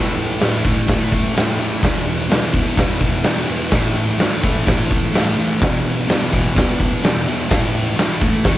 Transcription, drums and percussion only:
0.40 snare loud
0.40 crash medium
0.65 kick medium
0.88 kick loud
0.88 snare loud
0.88 crash medium
1.12 kick medium
1.37 snare loud
1.37 crash medium
1.83 kick loud
1.83 snare loud
1.83 crash medium
2.31 snare loud
2.31 crash medium
2.54 kick medium
2.77 kick loud
2.77 snare loud
2.77 crash medium
3.01 kick medium
3.23 snare loud
3.23 crash medium
3.71 kick loud
3.71 snare loud
3.71 crash medium
4.19 snare loud
4.19 crash medium
4.44 kick medium
4.67 kick loud
4.67 snare loud
4.67 crash medium
4.91 kick medium
5.14 snare loud
5.14 crash medium
5.62 kick loud
5.62 snare loud
5.62 crash medium
5.62 shaker medium
5.85 shaker loud
6.08 snare loud
6.08 crash medium
6.08 shaker medium
6.31 kick medium
6.31 shaker loud
6.56 kick loud
6.56 snare loud
6.56 crash medium
6.56 shaker medium
6.79 kick medium
6.79 shaker loud
6.92 shaker soft
7.03 snare loud
7.03 crash medium
7.03 shaker medium
7.27 shaker loud
7.39 shaker soft
7.50 kick loud
7.50 snare loud
7.50 crash medium
7.50 shaker medium
7.75 shaker loud
7.98 snare loud
7.98 crash medium
7.98 shaker medium
8.22 kick medium
8.22 shaker loud
8.44 kick loud
8.44 snare loud
8.44 crash medium
8.44 shaker medium

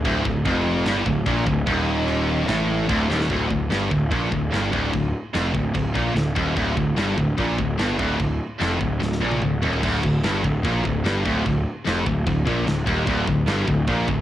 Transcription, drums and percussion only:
0.05 kick loud
0.05 china medium
0.25 kick loud
0.46 kick loud
0.46 china medium
0.86 snare loud
0.86 china medium
1.06 kick loud
1.26 kick loud
1.26 china medium
1.47 kick loud
1.67 kick loud
1.67 china medium
2.08 china medium
2.48 snare loud
2.48 china medium
2.89 kick loud
2.89 china medium
3.10 snare medium
3.21 snare loud
3.30 kick loud
3.30 china medium
3.50 kick medium
3.71 snare loud
3.71 china medium
3.91 kick loud
4.12 kick loud
4.12 china medium
4.32 kick medium
4.53 snare loud
4.53 china soft
4.73 kick loud
4.93 kick medium
4.93 china medium
5.34 snare loud
5.34 china medium
5.55 kick medium
5.75 kick loud
5.75 china medium
5.95 kick loud
6.16 snare loud
6.16 china medium
6.36 kick loud
6.57 kick loud
6.57 china medium
6.77 kick loud
6.97 snare loud
6.97 china medium
7.18 kick medium
7.38 kick medium
7.38 china medium
7.59 kick medium
7.79 snare loud
7.79 china soft
7.99 kick loud
8.20 kick loud
8.20 china medium
8.61 snare loud
8.61 china medium
8.81 kick medium
9.02 snare medium
9.12 snare medium
9.32 high tom medium
9.42 mid tom medium
9.63 floor tom loud
9.73 floor tom medium
9.83 kick loud
9.83 china medium
9.83 crash loud
10.03 kick medium
10.23 snare loud
10.23 china medium
10.44 kick medium
10.65 kick loud
10.65 china medium
10.85 kick medium
11.05 snare loud
11.05 china medium
11.26 kick loud
11.46 kick medium
11.46 china medium
11.87 snare loud
11.87 china medium
12.06 kick medium
12.27 kick medium
12.27 china medium
12.47 kick loud
12.67 snare loud
12.67 china medium
12.87 kick loud
13.07 kick loud
13.07 china medium
13.27 kick medium
13.47 snare loud
13.47 china medium
13.68 kick medium
13.87 kick loud
13.87 china medium
14.08 kick medium

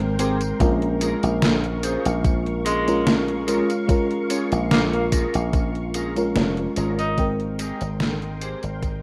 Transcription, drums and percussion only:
0.00 closed hi-hat soft
0.19 closed hi-hat medium
0.19 tambourine medium
0.41 closed hi-hat medium
0.41 tambourine soft
0.60 kick loud
0.60 closed hi-hat medium
0.60 tambourine soft
0.82 closed hi-hat soft
1.01 closed hi-hat medium
1.01 tambourine medium
1.23 closed hi-hat soft
1.23 tambourine soft
1.42 snare loud
1.42 closed hi-hat medium
1.42 tambourine soft
1.64 closed hi-hat soft
1.83 closed hi-hat medium
1.83 tambourine medium
2.05 closed hi-hat medium
2.05 tambourine soft
2.25 kick loud
2.25 closed hi-hat medium
2.25 tambourine soft
2.46 closed hi-hat soft
2.66 closed hi-hat medium
2.66 tambourine medium
2.88 closed hi-hat medium
2.88 tambourine soft
3.07 snare loud
3.07 closed hi-hat medium
3.07 tambourine soft
3.28 closed hi-hat soft
3.48 closed hi-hat medium
3.48 tambourine medium
3.70 closed hi-hat medium
3.70 tambourine soft
3.89 kick loud
3.89 closed hi-hat medium
3.89 tambourine soft
4.11 closed hi-hat soft
4.30 closed hi-hat medium
4.30 tambourine medium
4.52 closed hi-hat soft
4.52 tambourine soft
4.71 snare loud
4.71 closed hi-hat medium
4.71 tambourine soft
4.93 closed hi-hat soft
5.12 kick loud
5.12 closed hi-hat medium
5.12 tambourine medium
5.34 closed hi-hat medium
5.34 tambourine soft
5.53 kick loud
5.53 closed hi-hat medium
5.53 tambourine soft
5.75 closed hi-hat soft
5.94 closed hi-hat medium
5.94 tambourine medium
6.16 closed hi-hat medium
6.16 tambourine soft
6.36 snare loud
6.36 closed hi-hat soft
6.36 tambourine soft
6.57 closed hi-hat soft
6.76 closed hi-hat medium
6.76 tambourine medium
6.99 closed hi-hat medium
6.99 tambourine soft
7.18 kick loud
7.18 closed hi-hat medium
7.18 tambourine soft
7.40 closed hi-hat soft
7.59 closed hi-hat medium
7.59 tambourine medium
7.81 closed hi-hat medium
7.81 tambourine soft
8.00 snare loud
8.00 closed hi-hat medium
8.00 tambourine soft
8.22 closed hi-hat soft
8.41 closed hi-hat medium
8.41 tambourine medium
8.63 closed hi-hat medium
8.63 tambourine soft
8.83 kick loud
8.83 closed hi-hat medium
8.83 tambourine soft

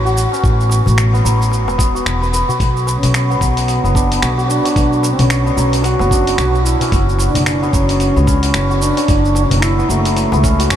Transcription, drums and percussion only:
0.06 shaker soft
0.17 shaker medium
0.32 darbuka ka soft
0.32 shaker soft
0.44 kick loud
0.44 shaker soft
0.60 shaker soft
0.70 darbuka tek medium
0.70 shaker medium
0.86 darbuka dum medium
0.86 shaker soft
0.98 finger snap loud
0.98 shaker soft
1.15 shaker soft
1.26 shaker medium
1.41 darbuka ka soft
1.41 shaker soft
1.52 darbuka tek medium
1.52 shaker soft
1.68 darbuka ka soft
1.68 darbuka tek medium
1.68 shaker soft
1.79 kick loud
1.79 shaker medium
1.96 shaker soft
2.06 finger snap medium
2.06 shaker soft
2.22 darbuka tek soft
2.22 shaker soft
2.33 shaker medium
2.49 darbuka dum medium
2.49 shaker soft
2.60 kick loud
2.60 open hi-hat soft
2.60 shaker soft
2.77 shaker soft
2.87 darbuka tek medium
2.87 shaker medium
3.03 open hi-hat soft
3.03 darbuka dum medium
3.03 shaker soft
3.14 finger snap medium
3.14 open hi-hat soft
3.14 shaker soft
3.31 shaker soft
3.41 kick medium
3.41 shaker medium
3.57 open hi-hat soft
3.57 shaker soft
3.68 open hi-hat soft
3.68 shaker soft
3.85 shaker soft
3.95 kick loud
3.95 darbuka ka medium
3.95 darbuka tek medium
3.95 shaker medium
4.12 open hi-hat medium
4.12 shaker soft
4.22 finger snap medium
4.22 open hi-hat soft
4.22 darbuka ka medium
4.22 shaker soft
4.39 shaker soft
4.50 shaker medium
4.65 open hi-hat soft
4.65 darbuka ka soft
4.65 shaker soft
4.76 kick loud
4.76 open hi-hat soft
4.76 shaker soft
4.93 shaker soft
5.03 darbuka tek medium
5.03 shaker medium
5.19 open hi-hat medium
5.19 darbuka dum medium
5.19 shaker soft
5.30 finger snap loud
5.30 open hi-hat soft
5.30 shaker soft
5.47 shaker soft
5.58 shaker medium
5.72 open hi-hat medium
5.72 darbuka ka soft
5.72 shaker soft
5.84 open hi-hat soft
5.84 darbuka tek medium
5.84 shaker soft
5.99 darbuka ka soft
5.99 darbuka tek medium
5.99 shaker soft
6.11 kick loud
6.11 shaker medium
6.27 open hi-hat medium
6.27 shaker soft
6.38 finger snap medium
6.38 open hi-hat soft
6.38 shaker soft
6.55 shaker soft
6.66 shaker medium
6.81 open hi-hat soft
6.81 darbuka dum medium
6.81 shaker soft
6.92 kick loud
6.92 open hi-hat soft
6.92 shaker soft
7.09 shaker soft
7.19 darbuka tek medium
7.19 shaker medium
7.34 open hi-hat medium
7.34 darbuka dum medium
7.34 shaker soft
7.46 finger snap medium
7.46 open hi-hat soft
7.46 shaker soft
7.63 shaker soft
7.73 kick loud
7.73 shaker medium
7.89 open hi-hat soft
7.89 shaker soft
8.00 open hi-hat soft
8.00 shaker soft
8.17 shaker soft
8.27 kick loud
8.27 darbuka ka medium
8.27 darbuka tek soft
8.27 shaker medium
8.43 open hi-hat medium
8.43 shaker soft
8.54 finger snap loud
8.54 open hi-hat soft
8.54 darbuka ka medium
8.54 shaker soft
8.71 shaker soft
8.82 shaker medium
8.97 open hi-hat medium
8.97 darbuka ka medium
8.97 shaker soft
9.08 kick loud
9.08 open hi-hat soft
9.08 shaker soft
9.25 shaker soft
9.35 darbuka tek medium
9.35 shaker medium
9.50 open hi-hat medium
9.50 darbuka dum medium
9.50 shaker soft
9.62 finger snap loud
9.62 open hi-hat soft
9.62 shaker soft
9.79 shaker soft
9.90 shaker medium
10.05 open hi-hat medium
10.05 darbuka ka soft
10.05 shaker soft
10.16 open hi-hat soft
10.16 darbuka tek medium
10.16 shaker soft
10.32 darbuka ka soft
10.32 darbuka tek medium
10.32 shaker soft
10.44 kick loud
10.44 shaker medium
10.60 open hi-hat medium
10.60 shaker soft
10.70 finger snap loud
10.70 open hi-hat soft
10.70 shaker soft

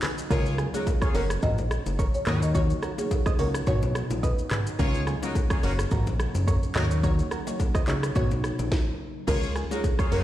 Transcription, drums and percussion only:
0.02 cross-stick medium
0.02 clap medium
0.02 open hi-hat medium
0.02 low conga medium
0.02 shaker medium
0.18 shaker loud
0.31 kick loud
0.31 low conga medium
0.31 shaker medium
0.46 shaker medium
0.58 cross-stick medium
0.58 shaker medium
0.74 low bongo medium
0.74 shaker loud
0.87 kick medium
0.87 high bongo medium
0.87 shaker medium
1.02 kick loud
1.02 cross-stick medium
1.02 shaker medium
1.15 open hi-hat medium
1.15 high bongo medium
1.15 shaker medium
1.30 cross-stick loud
1.30 shaker medium
1.42 kick loud
1.42 mid tom loud
1.42 low conga medium
1.42 shaker medium
1.58 low bongo medium
1.58 shaker soft
1.71 cross-stick loud
1.71 shaker medium
1.86 low bongo medium
1.86 shaker medium
1.99 kick loud
1.99 high bongo medium
1.99 shaker medium
2.14 shaker medium
2.26 cross-stick medium
2.26 clap medium
2.26 mid tom medium
2.26 low conga medium
2.26 shaker medium
2.42 shaker loud
2.55 kick loud
2.55 low conga medium
2.55 shaker medium
2.70 shaker medium
2.83 cross-stick medium
2.83 shaker medium
2.98 low bongo medium
2.98 shaker loud
3.11 kick medium
3.11 high bongo medium
3.11 shaker medium
3.26 kick medium
3.26 cross-stick medium
3.26 shaker medium
3.39 open hi-hat medium
3.39 high bongo medium
3.39 shaker medium
3.54 cross-stick loud
3.54 shaker medium
3.67 kick loud
3.67 mid tom loud
3.67 low conga medium
3.67 shaker medium
3.82 low bongo medium
3.82 shaker soft
3.95 cross-stick loud
3.95 shaker medium
4.10 low bongo medium
4.10 shaker medium
4.23 kick loud
4.23 high bongo medium
4.23 shaker medium
4.39 shaker medium
4.51 cross-stick loud
4.51 clap loud
4.51 mid tom medium
4.51 low conga medium
4.51 shaker medium
4.67 shaker loud
4.79 kick loud
4.79 low conga medium
4.79 shaker medium
4.94 shaker medium
5.07 cross-stick medium
5.07 shaker medium
5.23 low bongo medium
5.23 shaker loud
5.35 kick medium
5.35 high bongo medium
5.35 shaker medium
5.50 kick loud
5.50 cross-stick loud
5.50 shaker medium
5.63 open hi-hat medium
5.63 high bongo medium
5.63 shaker medium
5.79 cross-stick loud
5.79 shaker medium
5.91 kick loud
5.91 mid tom loud
5.91 low conga medium
5.91 shaker medium
6.07 low bongo medium
6.07 shaker medium
6.20 cross-stick loud
6.20 shaker medium
6.35 low bongo medium
6.35 shaker medium
6.48 kick loud
6.48 high bongo medium
6.48 shaker medium
6.63 shaker medium
6.75 cross-stick loud
6.75 clap medium
6.75 mid tom loud
6.75 low conga medium
6.75 shaker medium
6.91 shaker loud
7.03 kick loud
7.03 low conga medium
7.03 shaker medium
7.19 shaker medium
7.31 cross-stick medium
7.31 shaker medium
7.47 low bongo medium
7.47 shaker loud
7.60 kick loud
7.60 high bongo medium
7.60 shaker medium
7.75 kick medium
7.75 cross-stick medium
7.75 shaker medium
7.88 clap loud
7.88 high bongo medium
7.88 shaker medium
8.03 cross-stick loud
8.03 shaker medium
8.15 kick loud
8.15 mid tom loud
8.15 high bongo medium
8.15 low conga medium
8.15 shaker medium
8.31 low bongo medium
8.31 shaker soft
8.44 cross-stick loud
8.44 shaker medium
8.59 low bongo medium
8.59 shaker medium
8.72 kick loud
8.72 snare loud
9.28 kick loud
9.28 crash loud
9.28 low conga medium
9.28 shaker medium
9.43 shaker medium
9.56 cross-stick medium
9.56 shaker medium
9.71 low bongo medium
9.71 shaker loud
9.84 kick loud
9.84 high bongo medium
9.84 shaker medium
9.99 kick loud
9.99 cross-stick medium
9.99 shaker medium
10.12 open hi-hat medium
10.12 high bongo medium
10.12 shaker medium

